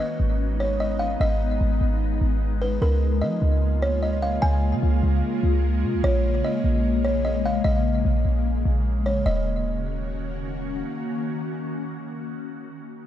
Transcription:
0.00 9.22 G#3 medium
0.00 2.78 B3 medium
0.00 2.78 D#4 medium
0.00 0.56 D#5 medium
0.20 1.16 G#1 loud
0.60 0.79 C#5 medium
0.80 0.99 D#5 medium
0.99 1.19 F5 medium
1.20 1.59 G#1 loud
1.20 2.58 D#5 loud
1.61 1.80 G#1 loud
1.81 2.20 G#1 loud
2.21 2.79 G#1 loud
2.62 2.81 B4 medium
2.82 3.23 C#2 loud
2.82 9.22 C#3 medium
2.82 9.22 A#3 medium
2.82 6.01 F4 medium
2.82 3.20 A#4 medium
3.22 3.41 F3 loud
3.22 3.78 D#5 medium
3.42 4.39 C#2 loud
3.82 4.01 C#5 medium
4.03 4.22 D#5 medium
4.22 4.42 F5 medium
4.42 4.74 C#2 loud
4.42 5.99 G#5 loud
4.73 4.82 C#3 loud
4.83 5.02 C#2 loud
5.03 5.22 C#2 loud
5.43 5.85 C#2 loud
5.84 5.95 C#3 loud
5.93 6.03 C#2 loud
6.04 6.42 A#1 loud
6.04 6.42 C#5 loud
6.44 7.01 D#5 medium
6.64 7.61 A#1 loud
7.05 7.24 C#5 medium
7.25 7.44 D#5 medium
7.46 7.64 F5 medium
7.64 8.03 A#1 loud
7.64 9.02 D#5 loud
8.05 8.24 A#1 loud
8.25 8.64 A#1 loud
8.65 9.23 A#1 loud
9.06 9.25 C#5 medium
9.26 10.83 D#1 loud
9.26 12.40 D#3 medium
9.26 12.40 A#3 medium
9.26 12.40 C#4 medium
9.26 12.40 F#4 medium
9.26 10.43 D#5 medium

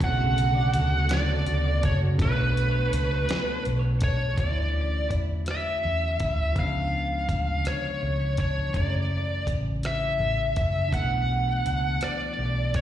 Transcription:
0.00 0.70 B1 loud
0.00 4.33 B2 medium
0.00 2.13 D3 medium
0.00 2.16 F#3 medium
0.00 2.42 F#3 medium
0.00 2.15 F#3 medium
0.00 4.33 A3 medium
0.00 1.08 B3 medium
0.00 4.34 B3 medium
0.00 4.34 F#4 medium
0.00 0.19 A4 medium
0.00 kick loud
0.00 closed hi-hat medium
0.04 2.17 A3 medium
0.04 0.11 C4 medium
0.04 1.15 F#5 loud
0.14 2.13 C#3 medium
0.19 0.72 A4 medium
0.38 0.90 F#4 medium
0.38 closed hi-hat medium
0.55 1.64 D5 medium
0.73 1.43 D2 medium
0.73 1.28 A4 medium
0.73 closed hi-hat medium
0.91 1.46 F#4 medium
1.08 2.18 B3 medium
1.08 snare loud
1.08 closed hi-hat medium
1.13 1.80 D5 medium
1.28 1.82 A4 medium
1.46 1.79 D2 loud
1.46 2.01 F#4 medium
1.46 closed hi-hat soft
1.64 2.71 D5 medium
1.83 2.16 F#1 loud
1.83 2.37 A4 medium
1.83 1.95 C#5 medium
1.83 kick loud
1.83 closed hi-hat medium
2.01 2.53 F#4 medium
2.14 2.23 C#3 medium
2.14 4.33 F#3 medium
2.14 3.24 B3 medium
2.14 4.35 C#5 medium
2.19 2.88 B1 loud
2.19 4.35 A3 medium
2.19 4.34 D4 medium
2.19 3.62 B4 medium
2.19 kick loud
2.19 closed hi-hat medium
2.25 4.36 C#5 medium
2.37 2.88 A4 medium
2.54 3.08 D4 medium
2.54 closed hi-hat medium
2.71 3.79 C#5 medium
2.88 3.43 A4 medium
2.93 3.25 C#2 medium
2.93 closed hi-hat medium
3.08 3.61 D4 medium
3.26 4.43 B3 medium
3.26 closed hi-hat medium
3.31 snare loud
3.44 3.98 A4 medium
3.62 4.16 D4 medium
3.62 closed hi-hat soft
3.67 4.34 B1 medium
3.79 6.95 C#5 medium
3.99 5.08 A4 medium
3.99 kick loud
3.99 closed hi-hat medium
4.04 4.40 C#5 medium
4.17 4.71 D4 medium
4.34 6.55 D3 medium
4.34 6.50 E3 medium
4.34 6.52 F#3 soft
4.34 kick loud
4.34 closed hi-hat medium
4.38 5.07 D2 medium
4.38 6.53 A3 soft
4.38 5.07 D5 medium
4.44 4.47 B3 soft
4.51 6.58 E4 medium
4.72 5.81 C#4 soft
5.08 5.79 E2 medium
5.08 6.18 E4 medium
5.08 kick medium
5.08 closed hi-hat medium
5.45 6.62 F#3 medium
5.45 cross-stick medium
5.45 closed hi-hat medium
5.51 6.59 E5 medium
5.82 6.17 E2 medium
5.82 6.91 C#4 medium
6.20 6.53 D2 medium
6.20 6.63 E4 medium
6.20 kick medium
6.20 closed hi-hat medium
6.52 8.73 C#3 medium
6.52 8.68 F3 medium
6.52 8.70 G#3 soft
6.52 kick medium
6.52 closed hi-hat medium
6.56 7.25 C#2 medium
6.56 8.71 B3 soft
6.56 7.70 F5 medium
6.63 8.73 D4 medium
6.92 8.01 B3 medium
7.29 7.62 D2 medium
7.29 8.37 D4 medium
7.29 kick medium
7.29 closed hi-hat medium
7.64 8.81 F3 medium
7.64 8.39 C#5 medium
7.64 muted fingered electric bass stroke soft
7.64 cross-stick loud
7.64 closed hi-hat medium
8.01 8.71 C#2 medium
8.01 8.20 A3 medium
8.20 8.81 B3 soft
8.37 8.81 D4 medium
8.37 8.76 C#5 medium
8.37 kick medium
8.37 closed hi-hat medium
8.69 10.86 E3 medium
8.69 10.87 F#3 soft
8.74 9.43 F#1 medium
8.74 10.92 F#2 medium
8.74 10.89 A3 medium
8.74 9.44 D5 medium
8.74 kick medium
8.74 closed hi-hat medium
8.80 10.91 C#3 medium
9.10 10.19 A3 medium
9.47 10.16 A1 medium
9.47 10.56 C#4 medium
9.47 kick medium
9.47 closed hi-hat medium
9.83 11.68 E3 medium
9.83 10.94 E5 medium
9.83 cross-stick medium
9.83 closed hi-hat medium
10.19 10.52 A1 medium
10.19 11.28 A3 medium
10.56 10.89 F#1 medium
10.56 11.32 C#4 medium
10.56 kick medium
10.56 closed hi-hat medium
10.89 12.81 B2 medium
10.89 12.81 E3 soft
10.89 12.81 D4 medium
10.89 kick loud
10.93 11.61 B1 medium
10.93 12.81 A3 medium
10.93 12.05 F#5 medium
10.93 closed hi-hat medium
10.99 11.02 B3 soft
11.06 12.81 B3 medium
11.29 11.48 G3 soft
11.48 12.38 A3 soft
11.65 11.98 C#2 medium
11.65 12.74 D4 medium
11.65 closed hi-hat medium
12.01 12.81 E3 medium
12.01 12.75 D5 medium
12.01 muted fingered electric bass stroke soft
12.01 cross-stick medium
12.01 closed hi-hat medium
12.39 12.81 B1 medium
12.39 12.81 A3 medium
12.74 12.81 D4 medium
12.74 12.81 C#5 medium
12.74 kick medium
12.74 closed hi-hat medium

